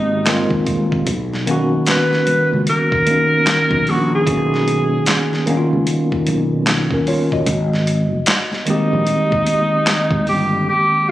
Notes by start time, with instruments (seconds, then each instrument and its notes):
Already playing: fretless electric bass G#1, tine electric piano D#3 G#3 A#3 B3 C4 G4, tenor saxophone D#4
0.26 tine electric piano D#3 G#3 A#3 C4, snare, clap, closed hi-hat
0.30 tine electric piano F4
0.50 kick
0.66 kick, closed hi-hat, high conga, low conga
0.92 kick
1.07 fretless electric bass B1, kick, closed hi-hat
1.34 snare
1.47 tine electric piano D#3 A#3 B3 C#4, closed hi-hat
1.51 tine electric piano F#4
1.86 tenor saxophone B4, snare, clap, closed hi-hat
2.12 snare, high conga
2.26 muted fretless electric bass stroke, closed hi-hat, muted conga, low conga
2.53 fretless electric bass C#2
2.67 tenor saxophone A#4, closed hi-hat, low conga
2.92 kick
3.06 tine electric piano D#3 A#3 B3 C#4, closed hi-hat, muted conga, high conga
3.11 tine electric piano D#4
3.46 snare, clap, closed hi-hat, muted conga
3.71 fretless electric bass B1, kick
3.87 fretless electric bass A#1, tenor saxophone F#4, open hi-hat, high conga, low conga
4.15 tenor saxophone G#4
4.27 fretless electric bass B1, tine electric piano D#3 A#3 B3 C#4, kick, closed hi-hat
4.31 tine electric piano F#4
4.54 snare
4.67 closed hi-hat, muted conga
5.06 snare, clap, closed hi-hat, muted conga
5.31 snare, high conga
5.46 tine electric piano D#3 A#3 B3 C#4, muted fretless electric bass stroke, closed hi-hat, low conga
5.50 tine electric piano D#4
5.57 tine electric piano F4
5.73 fretless electric bass C#2
5.86 closed hi-hat, muted conga, low conga
6.12 muted fretless electric bass stroke, kick
6.27 fretless electric bass B1, closed hi-hat, muted conga, high conga
6.67 snare, clap, closed hi-hat
6.91 tine electric piano C#4 A#4, kick
7.07 tine electric piano F4 C#5, open hi-hat, muted conga, high conga, low conga
7.32 tine electric piano F#4 D#5, kick
7.46 fretless electric bass G#1, kick, closed hi-hat, muted conga
7.73 snare
7.87 closed hi-hat, muted conga
8.26 snare, clap, closed hi-hat, muted conga
8.52 snare, high conga
8.65 tine electric piano D#3 G#3 A#3 C4, muted fretless electric bass stroke, closed hi-hat, muted conga, low conga
8.70 tenor saxophone D#4, tine electric piano G4
8.93 fretless electric bass A#1
9.06 closed hi-hat, low conga
9.32 kick
9.47 closed hi-hat, high conga
9.87 snare, clap, closed hi-hat
10.11 fretless electric bass G#1, kick
10.27 fretless electric bass G1, tenor saxophone G4, open hi-hat, high conga, low conga
10.69 tenor saxophone G4